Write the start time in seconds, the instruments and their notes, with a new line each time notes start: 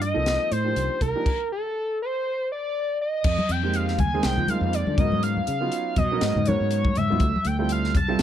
Already playing: fretless electric bass G2
0.02 analog synth lead D#5, flute D#5, closed hi-hat
0.14 fretless electric bass C2, grand piano F3 A#3 C4 D#4 A4
0.26 snare, closed hi-hat
0.51 fretless electric bass A2, analog synth lead C5, flute C5, closed hi-hat
0.65 grand piano F3 A#3 D4 D#4 G4
0.76 fretless electric bass C2, closed hi-hat
1.01 fretless electric bass C2, analog synth lead A#4, flute A#4, kick, closed hi-hat
1.16 grand piano F3 A#3 D4 D#4 G4
1.26 kick, crash
1.52 analog synth lead A4
2.02 analog synth lead C5
2.52 analog synth lead D5
3.01 analog synth lead D#5
3.24 fretless electric bass F2, kick, crash
3.38 high conga
3.49 fretless electric bass F2, analog synth lead G5, closed hi-hat
3.63 grand piano G#3 A#3 C4 D#4 G4
3.74 analog synth lead F5, closed hi-hat
3.88 snare
3.98 fretless electric bass D#2, analog synth lead G#5, kick, closed hi-hat, high conga, low conga
4.14 grand piano G#3 A#3 C4 D#4 G#4
4.23 fretless electric bass C2, analog synth lead G5, snare, closed hi-hat
4.37 fretless electric bass F3, low conga
4.48 grand piano G#3 A#3 C4 D#4 F4, analog synth lead F5, closed hi-hat, high conga
4.61 fretless electric bass F2
4.73 analog synth lead D5, closed hi-hat
4.87 fretless electric bass D3, high conga
4.98 fretless electric bass G#2, grand piano F#3 B3 C#4 D#4 A#4, analog synth lead D#5, kick, closed hi-hat, low conga
5.12 high conga
5.23 analog synth lead F5, closed hi-hat
5.37 high conga
5.47 fretless electric bass C#3, closed hi-hat
5.60 grand piano F#3 B3 C#4 D#4 F4
5.72 closed hi-hat
5.96 fretless electric bass B2, analog synth lead D#5, kick, closed hi-hat, high conga, low conga
6.12 grand piano F#3 B3 C#4 D#4 A#4
6.21 fretless electric bass G#2, snare, closed hi-hat
6.35 fretless electric bass G#2, low conga
6.46 grand piano F#3 B3 C#4 D#4 A#4, analog synth lead C#5, closed hi-hat, high conga
6.60 fretless electric bass G#2
6.71 closed hi-hat
6.85 kick, high conga
6.95 fretless electric bass G#2, analog synth lead E5, closed hi-hat, low conga
7.10 grand piano F#3 B3 C#4 D#4 F4, high conga
7.20 fretless electric bass D2, kick, closed hi-hat
7.36 high conga
7.45 fretless electric bass D2, analog synth lead G5, closed hi-hat
7.59 grand piano G3 C4 E4 F4 A4
7.69 analog synth lead F5, closed hi-hat
7.84 snare
7.95 fretless electric bass C2, analog synth lead A5, kick, closed hi-hat, high conga, low conga
8.08 grand piano G3 C4 E4 F4 A4
8.19 snare, closed hi-hat